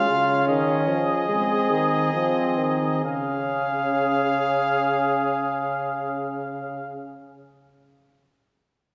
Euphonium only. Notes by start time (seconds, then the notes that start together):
0.10 C#3
0.48 D#3
0.88 F3
1.29 G#3
1.71 D#3
2.14 F3
2.59 D#3
3.05 C#3